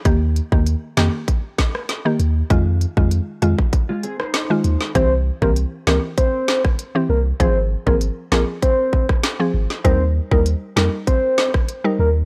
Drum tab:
HH |x-x-x-x-x-x-x-x-|x-x-x-x-x-x-x-x-|x---x---x---x---|x---x---x---x---|
SD |------o---oro---|-----------ro--o|------o---or----|------o----ro--o|
BD |o--o----o-o-----|o--o---oo-------|o--o----o--o----|o--o----o-oo----|

HH |x---x---x---x---|
SD |------o---or----|
BD |o--o----o--o----|